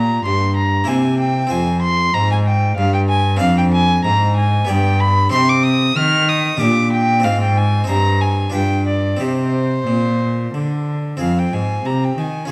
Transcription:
0.00 0.22 A#2 medium
0.00 0.24 A#2 medium
0.00 0.83 A#3 soft
0.00 0.84 G4 soft
0.00 0.85 C#5 soft
0.00 0.24 A#5 medium
0.25 0.88 G2 medium
0.25 0.85 G2 medium
0.25 0.56 C6 loud
0.57 0.89 A#5 medium
0.84 1.48 A#3 soft
0.84 1.48 E4 soft
0.84 1.49 C5 soft
0.84 1.19 G#5 medium
0.88 1.48 C3 medium
0.88 1.51 C3 medium
1.19 1.53 G5 medium
1.47 2.72 C4 medium
1.47 3.36 F4 medium
1.47 3.37 C5 medium
1.51 2.11 F2 medium
1.51 2.14 F2 medium
1.51 1.81 G#5 loud
1.82 2.15 C6 loud
2.14 2.74 G#2 medium
2.14 2.77 G#2 medium
2.14 2.31 A#5 loud
2.31 2.38 G#5 medium
2.46 2.77 G5 medium
2.77 3.37 G2 medium
2.77 3.42 G2 medium
2.77 2.93 F5 loud
2.94 3.00 G5 medium
3.09 3.39 G#5 loud
3.36 4.63 C4 medium
3.36 4.64 D4 soft
3.36 4.65 D5 medium
3.36 3.56 F5 loud
3.41 4.05 F2 medium
3.41 4.01 F2 medium
3.58 3.64 G5 medium
3.73 4.04 G#5 loud
4.05 4.65 G#2 medium
4.05 4.68 G#2 medium
4.05 4.36 A#5 loud
4.37 4.70 G#5 medium
4.65 5.29 B3 medium
4.65 5.30 G4 medium
4.65 5.31 D5 medium
4.69 5.32 G2 medium
4.69 5.29 G2 medium
4.69 5.01 G5 loud
5.00 5.31 B5 loud
5.29 5.96 C3 medium
5.29 6.55 C4 soft
5.29 6.56 G4 medium
5.29 6.57 D#5 medium
5.29 5.51 C6 loud
5.34 5.93 C3 medium
5.49 5.65 D6 loud
5.63 5.98 D#6 loud
5.96 6.57 D#3 medium
5.96 6.60 D#3 medium
5.96 6.30 F6 loud
6.29 6.63 D#6 loud
6.57 7.21 D4 medium
6.57 7.22 G4 medium
6.57 7.22 A#4 medium
6.61 7.21 A#2 medium
6.61 7.27 A#2 medium
6.61 6.92 D6 loud
6.93 7.26 G5 loud
7.20 7.83 C4 medium
7.20 7.86 F4 soft
7.20 7.86 C5 medium
7.24 7.85 G#2 medium
7.24 7.88 G#2 medium
7.24 7.41 F5 loud
7.42 7.59 G5 medium
7.57 7.89 G#5 loud
7.84 8.50 C4 medium
7.84 8.51 D#4 medium
7.84 8.52 C5 medium
7.89 8.50 G2 medium
7.89 8.53 G2 medium
7.89 8.23 A#5 loud
8.21 8.54 G#5 medium
8.50 9.17 D4 soft
8.50 9.17 F4 medium
8.50 9.18 B4 soft
8.54 9.17 G2 medium
8.54 9.20 G2 medium
8.54 8.87 G5 medium
8.87 9.22 D5 medium
9.17 11.15 C4 soft
9.17 11.15 D#4 soft
9.17 11.16 G4 soft
9.21 9.84 C3 soft
9.21 9.87 C3 medium
9.21 10.88 C5 medium
9.87 10.50 A#2 medium
9.87 10.53 A#2 medium
10.54 11.17 D3 soft
10.54 11.20 D3 medium
11.17 11.51 F2 medium
11.17 12.13 C4 soft
11.17 12.45 F4 soft
11.17 12.45 G#4 soft
11.21 11.50 F2 soft
11.21 11.40 F5 medium
11.39 11.55 G5 medium
11.53 11.82 G#2 soft
11.53 11.84 G#2 medium
11.53 11.87 G#5 medium
11.85 12.17 C3 medium
11.85 12.15 C3 soft
11.85 12.06 A#5 medium
12.04 12.21 G5 medium
12.18 12.49 D#3 soft
12.18 12.47 D#3 medium
12.18 12.51 G#5 medium
12.45 12.52 C#4 soft
12.45 12.52 F4 soft
12.45 12.52 G#4 soft

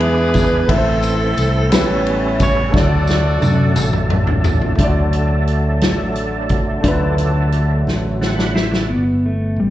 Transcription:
0.00 0.65 E2 medium
0.00 0.65 E3 medium
0.00 0.68 E3 medium
0.00 0.69 G#3 medium
0.00 0.69 B3 medium
0.00 0.66 D4 medium
0.00 0.69 D4 medium
0.00 0.68 E4 medium
0.00 0.66 G#4 medium
0.00 0.73 G#4 medium
0.00 0.70 B4 medium
0.00 ride bell soft
0.34 kick medium
0.34 ride bell soft
0.34 tambourine medium
0.67 1.33 A1 loud
0.67 1.67 A2 medium
0.67 1.71 E3 medium
0.67 1.69 A3 medium
0.67 1.71 A3 medium
0.67 1.71 C4 medium
0.67 1.70 C4 medium
0.67 1.72 E4 medium
0.67 1.68 A4 medium
0.67 0.77 B4 medium
0.67 kick loud
0.67 ride bell medium
0.72 1.69 C4 medium
0.72 1.69 E4 medium
0.72 1.73 A4 medium
0.78 1.76 C5 medium
1.03 ride bell soft
1.03 tambourine medium
1.37 1.72 C2 medium
1.37 ride bell soft
1.37 tambourine medium
1.69 2.70 A1 loud
1.69 2.70 A2 medium
1.69 2.73 G3 medium
1.69 2.69 A3 medium
1.69 2.73 B3 medium
1.69 1.78 C4 soft
1.69 2.73 C#4 medium
1.69 2.74 G4 medium
1.69 2.71 A4 medium
1.69 snare loud
1.69 ride bell medium
1.69 tambourine medium
1.73 2.71 C#4 medium
1.73 2.71 E4 medium
1.73 2.11 A4 medium
1.73 2.75 B4 medium
1.78 2.77 C#4 medium
2.06 ride bell soft
2.40 2.73 C#5 medium
2.40 kick medium
2.40 ride bell soft
2.40 tambourine medium
2.70 3.38 D2 loud
2.70 3.72 D3 medium
2.70 4.74 F#3 medium
2.70 4.73 A3 medium
2.70 4.74 A3 soft
2.70 4.74 D4 medium
2.70 4.74 A4 medium
2.70 kick loud
2.75 4.75 F#4 medium
2.75 4.07 F#4 medium
2.75 4.08 A4 medium
2.75 2.82 C#5 medium
2.75 4.12 D5 medium
2.75 snare medium
2.84 4.80 D5 medium
3.07 snare medium
3.07 tambourine medium
3.42 3.73 F#2 medium
3.42 high tom medium
3.42 tambourine medium
3.76 4.75 A1 medium
3.76 mid tom medium
3.76 tambourine medium
3.93 mid tom medium
4.10 mid tom medium
4.27 floor tom medium
4.44 floor tom loud
4.44 tambourine soft
4.61 floor tom medium
4.76 5.81 D2 medium
4.76 5.78 D3 medium
4.76 8.86 D3 medium
4.76 8.85 F#3 medium
4.76 6.78 A3 medium
4.76 8.85 A3 medium
4.76 7.82 D4 medium
4.76 6.80 D4 medium
4.76 7.82 A4 medium
4.76 kick medium
4.76 closed hi-hat medium
4.80 8.86 F#3 medium
4.80 8.86 A3 medium
4.80 8.86 D4 medium
4.80 4.86 E4 soft
4.80 6.82 D5 medium
4.88 6.84 F#4 medium
5.13 closed hi-hat soft
5.47 closed hi-hat soft
5.81 6.80 A1 medium
5.81 snare loud
5.81 closed hi-hat medium
6.16 closed hi-hat soft
6.49 kick medium
6.49 closed hi-hat soft
6.81 7.83 D2 loud
6.81 7.83 D3 medium
6.81 8.84 A3 medium
6.81 8.85 D4 medium
6.81 kick medium
6.81 closed hi-hat medium
6.86 6.91 F4 medium
6.86 8.87 B4 medium
6.92 8.89 F#4 medium
7.18 closed hi-hat medium
7.52 closed hi-hat soft
7.87 8.86 A1 medium
7.87 snare soft
8.21 8.38 C4 soft
8.21 8.37 A4 medium
8.21 8.53 F#5 medium
8.21 snare medium
8.36 8.54 D4 soft
8.36 8.53 B4 medium
8.36 snare medium
8.54 8.71 E4 soft
8.54 8.91 E4 medium
8.54 8.71 C5 soft
8.54 8.86 E5 medium
8.54 snare medium
8.71 9.05 F#4 soft
8.71 9.04 D5 soft
8.71 snare medium
8.89 9.54 G1 medium
8.89 9.25 B3 medium
9.26 9.60 A3 medium
9.56 9.70 A1 medium
9.56 9.70 G3 medium

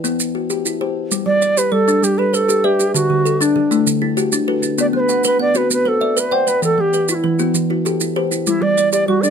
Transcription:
0.04 0.35 B3 medium
0.04 maracas medium
0.20 maracas medium
0.35 0.81 F#4 medium
0.50 0.80 G4 medium
0.50 maracas medium
0.65 1.11 E4 medium
0.65 maracas medium
0.81 1.11 G4 medium
0.81 1.27 C5 medium
1.11 1.42 G3 medium
1.11 maracas medium
1.26 1.57 G3 medium
1.26 1.59 D5 loud
1.42 1.70 D5 medium
1.42 1.88 D5 medium
1.42 maracas medium
1.57 1.88 G4 medium
1.57 1.74 B4 medium
1.57 maracas medium
1.72 2.01 G3 medium
1.72 2.05 A4 loud
1.72 2.18 D5 medium
1.88 2.18 D4 medium
1.88 2.33 A4 medium
1.88 maracas medium
2.03 2.33 G3 medium
2.03 2.20 G4 medium
2.03 maracas medium
2.18 2.47 G4 medium
2.18 2.65 A4 medium
2.18 2.36 B4 medium
2.33 2.66 A4 medium
2.33 2.63 B4 medium
2.33 2.79 C5 medium
2.33 maracas medium
2.48 2.78 G4 medium
2.48 2.95 G4 medium
2.48 maracas medium
2.64 2.95 G4 medium
2.64 2.95 B4 medium
2.64 3.10 D5 medium
2.64 3.10 E5 medium
2.79 3.10 G4 medium
2.79 maracas medium
2.94 3.25 D3 medium
2.94 3.43 F#4 loud
2.94 maracas medium
3.10 3.41 D3 medium
3.25 3.54 A4 medium
3.25 3.71 A4 medium
3.25 maracas medium
3.41 3.71 D4 medium
3.41 3.87 D4 medium
3.41 maracas medium
3.56 3.86 D3 medium
3.56 4.02 A4 medium
3.71 4.02 A3 medium
3.71 4.17 E4 medium
3.71 maracas medium
3.87 4.17 D3 medium
3.87 maracas medium
4.02 4.31 D4 medium
4.02 4.48 E4 medium
4.17 4.47 F#4 medium
4.17 4.63 G4 medium
4.17 maracas medium
4.32 4.61 D4 medium
4.32 4.79 D4 medium
4.32 maracas medium
4.48 4.79 F#4 medium
4.48 4.94 A4 medium
4.48 4.94 B4 medium
4.62 4.93 D4 medium
4.62 maracas medium
4.78 5.09 B3 medium
4.78 4.86 D5 medium
4.78 maracas medium
4.93 5.24 B3 medium
4.93 5.01 C5 medium
5.00 5.23 B4 medium
5.09 5.38 F#5 medium
5.09 5.55 F#5 medium
5.09 maracas medium
5.24 5.55 B4 medium
5.24 5.40 B4 medium
5.24 maracas medium
5.39 5.69 B3 medium
5.39 5.58 D5 loud
5.39 5.86 F#5 medium
5.55 6.01 C4 medium
5.55 5.86 F#4 medium
5.55 5.71 B4 medium
5.55 maracas medium
5.70 6.01 B3 medium
5.70 5.90 B4 medium
5.70 maracas medium
5.85 6.21 A4 medium
5.85 6.15 B4 medium
5.85 6.32 C5 medium
6.01 6.31 D5 medium
6.01 6.47 E5 medium
6.17 6.46 B4 medium
6.17 6.63 B4 medium
6.17 6.35 B4 medium
6.17 maracas medium
6.31 6.50 C5 medium
6.31 6.63 D5 medium
6.31 6.78 F#5 medium
6.31 6.78 G5 medium
6.47 6.78 B4 medium
6.47 6.63 B4 medium
6.47 maracas medium
6.62 6.93 E3 medium
6.62 6.82 A4 loud
6.62 maracas medium
6.78 7.09 E3 medium
6.78 7.10 G4 medium
6.93 7.23 B4 medium
6.93 7.40 B4 medium
6.93 maracas soft
7.08 7.55 E4 medium
7.08 7.15 F#4 medium
7.08 maracas medium
7.14 7.53 E4 medium
7.24 7.53 E3 medium
7.24 7.70 B4 medium
7.39 7.70 B3 medium
7.39 7.85 F#4 medium
7.39 maracas medium
7.54 7.85 E3 medium
7.54 maracas medium
7.70 8.00 E4 medium
7.70 8.16 F#4 medium
7.85 8.15 G4 medium
7.85 8.31 A4 medium
7.85 maracas medium
8.01 8.30 E4 medium
8.01 maracas medium
8.16 8.47 G4 medium
8.16 8.62 B4 medium
8.16 8.62 C5 medium
8.31 8.62 E4 medium
8.31 maracas medium
8.47 8.78 G3 medium
8.47 8.64 E4 loud
8.47 maracas medium
8.62 8.93 G3 medium
8.62 8.92 D5 loud
8.77 9.07 D5 medium
8.77 9.24 D5 medium
8.77 maracas medium
8.93 9.30 G4 medium
8.93 9.07 D5 medium
8.93 maracas medium
9.08 9.30 G3 medium
9.08 9.23 F#4 medium
9.08 9.30 D5 medium
9.22 9.30 D4 medium
9.22 9.30 A4 medium
9.22 9.30 D5 medium
9.22 maracas medium

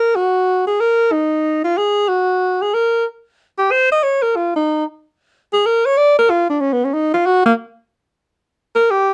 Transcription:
0.00 0.17 A#4 medium
0.16 0.67 F#4 medium
0.67 0.82 G#4 medium
0.80 1.13 A#4 medium
1.12 1.63 D#4 medium
1.64 1.79 F4 medium
1.77 2.10 G#4 medium
2.08 2.63 F#4 medium
2.62 2.75 G#4 medium
2.74 3.05 A#4 medium
3.58 3.73 G4 medium
3.71 3.90 C5 medium
3.92 4.04 D#5 medium
4.03 4.24 C#5 medium
4.22 4.38 A#4 medium
4.36 4.55 F4 medium
4.56 4.85 D#4 medium
5.53 5.67 G#4 medium
5.66 5.87 A#4 medium
5.85 5.99 C#5 medium
5.97 6.16 D5 loud
6.18 6.31 A#4 medium
6.30 6.49 F4 medium
6.49 6.62 D4 medium
6.60 6.74 C#4 medium
6.73 6.86 B3 medium
6.84 6.95 C#4 medium
6.93 7.13 D#4 medium
7.14 7.27 F4 medium
7.26 7.45 F#4 medium
7.46 7.53 A#3 medium
8.75 8.92 A#4 medium
8.91 9.14 G4 medium

